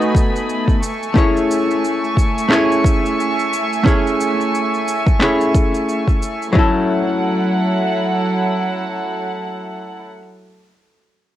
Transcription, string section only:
Already playing: A3 D#5 G#5 B5
0.82 E5 G#5 C#6
6.55 F#3 E4 A4 F#5

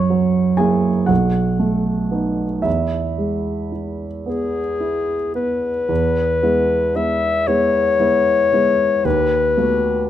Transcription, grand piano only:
Already playing: F#2 C#5 C#6
0.10 F#3
0.57 A#3 E4 G#4 G#5
1.06 B1 F#4 F#5
1.59 A3
2.11 B3 D#4
2.62 E2 E4 E5
3.18 G#3
3.72 E4
4.26 B3
4.80 E4
5.35 B3
5.89 E2
6.42 G#3 B3 E4
6.95 G#3 B3 E4
7.48 G#3 B3 E4
7.99 G#3 B3 E4
8.53 G#3 B3 E4
9.05 D#2
9.57 A3 B3 F#4

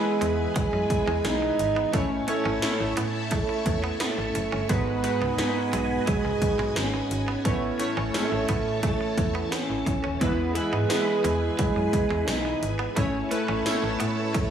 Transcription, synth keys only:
Already playing: E3 G#3 B3 E4 B4
1.92 A2 A3 C#4 E4 C#5
2.27 A3 C#4 E4 C#5
2.61 A3 C#4 E4 C#5
4.69 G#2 G#3 D#4 F#4 B4
5.03 G#3 D#4 F#4 B4
5.38 G#3 D#4 F#4 B4
7.45 A2 A3 C#4 E4 C#5
7.79 A3 C#4 E4 C#5
8.14 A3 C#4 E4 C#5
10.20 E3 G#3 B3 E4 B4
10.54 G#3 B3 E4 B4
10.89 G#3 B3 E4 B4
12.96 A2 A3 C#4 E4 C#5
13.31 A3 C#4 E4 B4
13.65 A3 C#4 E4 C#5

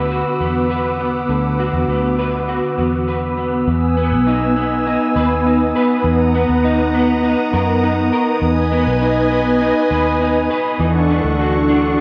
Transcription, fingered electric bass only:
Already playing: D2
0.40 E2
1.29 D2
1.73 E2
1.88 D2
2.78 E2
3.68 E2
4.11 B1
5.16 D#2
6.04 E2
6.49 D#2
7.53 F#2
8.42 E2
8.87 B1
9.91 D#2
10.79 E2
11.24 D2

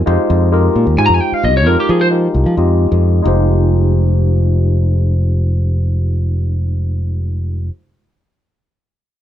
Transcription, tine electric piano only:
0.06 G#3 D#4 F4 G4 C5
0.52 G#3 D#4 F4 G4 A#4
0.97 G#3 D#4 F4 G4 C5
1.66 G#3 D#4 F4 G4 A#4
2.11 G#3 D#4 F4 G4 A#4
2.57 G#3 D#4 F4 G4 D#5
3.22 G#3 D#4 F4
3.26 G4 C5

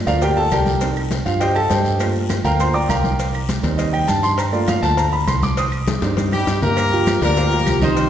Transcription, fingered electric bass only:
0.07 D2
0.52 C2
1.26 G2
1.70 G2
2.44 D2
2.89 C2
3.63 D#2
4.08 G2
4.83 D2
5.27 C2
6.02 G2
6.47 G2
7.22 D2
7.66 C2

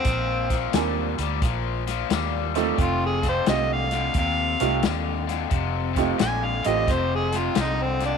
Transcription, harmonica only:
Already playing: C4
2.82 F4
3.06 G#4
3.29 C5
3.50 D#5
3.73 F5
4.19 F5
6.22 G#5
6.45 F5
6.68 D#5
6.92 C5
7.15 G#4
7.37 F4
7.60 D#4
7.83 C4
8.05 D4

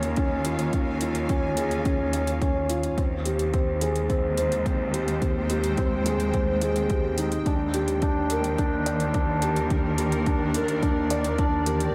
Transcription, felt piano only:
Already playing: C#4 F4 G#4 C#5
0.17 C#4
0.46 F4
0.74 C#4
1.02 F4
1.30 C#4
1.57 G#4
1.86 C#4
2.13 C#5
2.41 C#4
2.70 F4
2.97 C4
3.25 G4
3.54 C4
3.82 G#4
4.10 C4
4.38 C5
4.66 C4
4.94 G4
5.22 C4
5.50 G4
5.78 C4
6.06 G#4
6.34 C4
6.62 G#4
6.90 G4
7.18 D#4
7.46 D4
7.74 G4
8.02 D4
8.31 A#4
8.58 D4
8.86 D5
9.14 D4
9.43 G4
9.71 D4
9.98 G4
10.26 D4
10.55 A#4
10.82 D4
11.11 D5
11.39 D4
11.67 G4

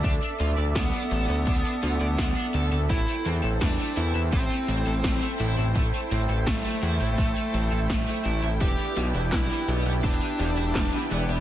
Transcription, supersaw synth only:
Already playing: A4 D5 E5
2.90 E4 C5 G5
8.61 B4 D5

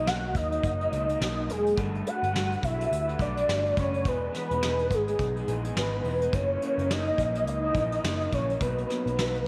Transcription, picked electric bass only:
Already playing: B1
0.35 D#2
0.63 F#1
0.92 C#2
1.21 B1
1.49 E1
1.77 G1
2.23 G1
2.63 B1
2.92 D2
3.19 B1
3.48 G1
3.77 F#1
4.05 E1
4.51 E1
4.90 G#1
5.19 B1
5.48 A#1
5.76 G#1
6.04 E1
6.33 F#1
6.78 F#1
7.18 A#1
7.46 C#2
7.75 A#1
8.04 F#1
8.32 A#1
8.61 B1
9.06 B1

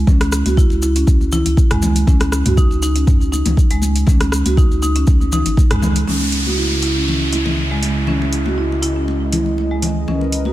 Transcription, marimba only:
0.07 C#4
0.46 F#4
0.58 E4
0.83 E4
0.96 C#4
1.33 E4
1.71 G#3
2.08 C#4
2.46 F#4
2.58 D#4
2.83 D#4
2.96 C#4
3.32 D#4
3.71 G#3
4.07 C#4
4.46 F#4
4.57 D#4
4.82 D#4
4.96 C#4
5.33 D#4
5.71 G#3
6.08 C#4
6.46 F#4
6.58 E4
6.83 E4
6.96 C#4
7.33 E4
7.71 G#3
8.08 C#4
8.46 F#4
8.58 E4
8.82 E4
8.96 C#4
9.33 E4
9.71 G#3
10.08 C#4
10.46 F#4

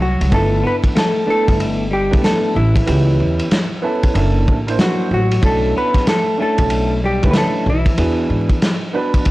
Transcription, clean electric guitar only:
0.00 F#3
0.32 A3
0.64 B3
0.96 A3
1.27 A3
1.91 G3
2.22 A3
2.54 E3
4.79 F#3
5.12 F#3
5.44 A3
5.77 B3
6.07 A3
6.40 A3
7.04 G3
7.29 B3
7.35 A3
7.67 E3

